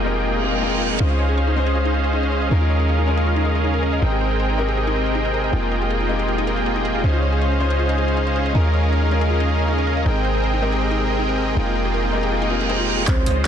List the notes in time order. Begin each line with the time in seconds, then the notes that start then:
Already playing: F1 G#3 A#3 C4 D#4 F4 G#4 A#4 D#5 G5
0.05 G#3 C4 D#4 G4 A#4
0.25 reverse cymbal
0.42 G#3 C4 D#4 G4 A#4
0.52 G#3 C4 D#4 G4 A#4
0.61 G#3 C4 D#4 A#4 G5
0.98 C#2 G#3 C#4 D#4 F4 G#4 C5 D#5 F5
1.02 C5
1.10 F4
1.19 C#5
1.29 G#4
1.38 C#5
1.48 D#4
1.56 G#3 C#4 D#4 F4 C5
1.67 G#4
1.75 F4
1.85 D#4
1.94 G#4
2.04 D#5
2.13 D#4
2.23 C5
2.32 C5
2.42 D#5
2.49 D#2 G#3 C#4 D#4 F4 G#4 A#4 D#5 F5
2.61 F4
2.70 C#5
2.80 G#4
2.89 C#5
2.99 D#4
3.07 G#3 C#4 D#4 F4 A#4
3.17 G#4
3.26 F4
3.36 D#4
3.45 G#4
3.55 D#5
3.64 D#4
3.74 A#4
3.83 A#4
3.93 D#5
4.00 G#1 G#3 C4 D#4 G#4 A#4 D#5 G5
4.04 A#4
4.12 G4
4.21 C5
4.31 G#4
4.40 C5
4.50 D#4
4.58 G#3 C4 D#4 G4 A#4
4.68 G#4
4.77 G4
4.87 D#4
4.96 G#4
5.06 D#5
5.15 D#4
5.25 A#4
5.34 A#4
5.44 D#5
5.51 F1 G#3 A#3 C4 D#4 F4 G#4 D#5 G5
5.55 A#4
5.63 F4
5.72 A#4
5.82 G4
5.90 A#4
6.00 D#4
6.09 G#3 C4 D#4 G4 G#4 A#4
6.19 G4
6.28 F4
6.38 D#4
6.47 A#4
6.57 G#4
6.66 G#4
6.76 D#4
6.85 G#4
6.95 F4
7.02 C#2 G#3 C#4 D#4 F4 G#4 C5 D#5 F5
7.06 C5
7.14 F4
7.23 C#5
7.33 G#4
7.42 C#5
7.51 D#4
7.59 G#3 C#4 D#4 F4 C5
7.70 G#4
7.79 F4
7.89 D#4
7.98 G#4
8.08 D#5
8.17 D#4
8.27 C5
8.36 C5
8.46 D#5
8.53 D#2 G#3 C#4 D#4 F4 G#4 A#4 D#5 F5
8.57 A#4
8.65 F4
8.74 C#5
8.84 G#4
8.93 C#5
9.02 D#4
9.10 G#3 C#4 D#4 F4 A#4
9.21 G#4
9.30 F4
9.40 D#4
9.49 G#4
9.59 D#5
9.68 D#4
9.78 A#4
9.87 A#4
9.97 D#5
10.04 G#1 G#3 C4 D#4 G#4 A#4 D#5 G5
10.08 A#4
10.16 G4
10.25 C5
10.35 G#4
10.44 C5
10.54 D#4
10.61 G#3 C4 D#4 G4 A#4
10.72 G#4
10.81 G4
10.91 D#4
11.00 G#4
11.10 D#5
11.19 D#4
11.29 A#4
11.38 A#4
11.48 D#5
11.55 F1 G#3 A#3 C4 D#4 F4 G#4 D#5 G5
11.59 A#4
11.67 F4
11.75 A#4
11.85 G4
11.94 A#4
12.04 D#4
12.12 G#3 C4 D#4 G4 G#4 A#4
12.23 G4
12.32 F4, reverse cymbal
12.42 D#4
12.50 G#3 C4 D#4 F4 G4 A#4
12.60 G#3 C4 D#4 G4 G#4 A#4
12.69 G#3 C4 D#4 A#4 C5 G5
12.79 F4
12.88 G#4
12.98 F4
13.05 C#2 G#3 C#4 D#4 F4 C5 D#5, kick, clap, closed hi-hat, riser
13.26 C#2 G#3 C#4 F4 C5 D#5, closed hi-hat